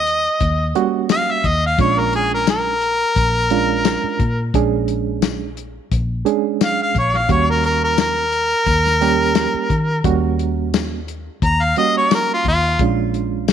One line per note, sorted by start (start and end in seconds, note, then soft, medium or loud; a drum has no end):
0.00 0.26 D#2 medium
0.00 0.72 D#5 medium
0.07 closed hi-hat medium
0.40 0.72 D#2 medium
0.40 kick medium
0.40 closed hi-hat medium
0.75 1.46 G3 medium
0.75 1.45 A#3 medium
0.75 1.46 C#4 medium
0.75 1.46 F#4 medium
0.75 closed hi-hat medium
1.09 1.33 F5 loud
1.09 snare loud
1.09 closed hi-hat medium
1.09 tambourine loud
1.31 1.49 E5 medium
1.44 1.75 D#2 medium
1.44 1.63 D#5 medium
1.44 kick medium
1.44 closed hi-hat medium
1.66 1.79 F5 medium
1.78 3.02 A#1 medium
1.78 2.73 G#3 medium
1.78 2.73 C#4 medium
1.78 2.73 D4 medium
1.78 2.73 F4 medium
1.78 2.00 C#5 medium
1.78 kick loud
1.78 closed hi-hat medium
1.99 2.13 A#4 medium
2.13 2.32 G#4 medium
2.13 closed hi-hat medium
2.34 2.48 A#4 medium
2.47 4.52 A#4 medium
2.47 snare loud
2.47 closed hi-hat medium
2.47 tambourine loud
2.82 closed hi-hat medium
3.16 3.95 A#1 loud
3.16 kick medium
3.16 closed hi-hat medium
3.50 4.21 G#3 medium
3.50 4.21 C#4 medium
3.50 4.21 D4 medium
3.50 4.21 F4 medium
3.50 closed hi-hat medium
3.85 snare loud
3.85 closed hi-hat medium
3.85 tambourine loud
4.04 muted fingered electric bass stroke soft
4.19 4.50 A#2 medium
4.19 kick medium
4.19 closed hi-hat medium
4.54 5.78 A#1 loud
4.54 5.49 G#3 medium
4.54 5.49 C#4 medium
4.54 5.49 D4 medium
4.54 5.49 G#4 medium
4.54 kick loud
4.54 closed hi-hat medium
4.88 closed hi-hat medium
5.22 snare loud
5.22 closed hi-hat medium
5.22 tambourine medium
5.57 closed hi-hat medium
5.92 6.23 A#1 medium
5.92 kick medium
5.92 closed hi-hat medium
6.25 6.96 G#3 medium
6.25 6.96 C#4 medium
6.25 6.96 D4 medium
6.25 6.96 G#4 medium
6.25 closed hi-hat medium
6.61 6.80 F5 medium
6.61 snare loud
6.61 closed hi-hat medium
6.61 tambourine loud
6.82 6.96 F5 medium
6.95 7.26 A#1 medium
6.95 kick medium
6.95 closed hi-hat medium
6.99 7.18 C#5 medium
7.14 7.30 F5 medium
7.14 snare soft
7.29 8.53 D#2 medium
7.29 8.23 G3 medium
7.29 8.23 A#3 medium
7.29 8.24 C#4 medium
7.29 8.24 F#4 medium
7.29 7.48 C#5 medium
7.29 kick medium
7.29 closed hi-hat medium
7.50 7.64 A#4 medium
7.64 7.82 A#4 medium
7.64 closed hi-hat medium
7.84 7.98 A#4 medium
7.98 10.02 A#4 loud
7.98 snare medium
7.98 closed hi-hat medium
7.98 tambourine loud
8.32 closed hi-hat medium
8.66 9.45 D#2 loud
8.66 kick medium
8.66 closed hi-hat medium
8.86 snare soft
9.01 9.71 G3 medium
9.01 9.72 A#3 medium
9.01 9.72 C#4 medium
9.01 9.72 G4 medium
9.01 closed hi-hat medium
9.35 snare loud
9.35 closed hi-hat medium
9.35 tambourine loud
9.54 muted fingered electric bass stroke soft
9.70 10.01 D#3 medium
9.70 kick medium
9.70 closed hi-hat medium
10.04 11.28 D#2 loud
10.04 10.99 G3 medium
10.04 10.99 A#3 medium
10.04 10.99 C#4 medium
10.04 10.99 F#4 medium
10.04 kick loud
10.04 closed hi-hat medium
10.39 closed hi-hat medium
10.74 snare loud
10.74 closed hi-hat medium
10.74 tambourine loud
11.08 closed hi-hat medium
11.42 11.73 D#2 medium
11.42 11.64 A#5 medium
11.42 kick medium
11.42 closed hi-hat medium
11.63 11.76 F5 medium
11.76 12.47 G3 medium
11.76 12.47 A#3 medium
11.76 12.47 C#4 medium
11.76 12.47 F#4 medium
11.76 11.95 D#5 medium
11.76 closed hi-hat medium
11.98 12.11 C#5 medium
12.11 12.30 A#4 medium
12.11 snare loud
12.11 closed hi-hat medium
12.11 tambourine loud
12.34 12.46 F4 medium
12.45 12.76 D#2 medium
12.45 12.80 F4 loud
12.45 kick medium
12.45 closed hi-hat medium
12.79 13.53 A#1 medium
12.79 13.53 G#3 medium
12.79 13.53 C#4 medium
12.79 13.53 D4 medium
12.79 13.53 F4 medium
12.79 kick loud
12.79 closed hi-hat medium
13.14 closed hi-hat medium
13.48 snare loud
13.48 closed hi-hat medium
13.48 tambourine medium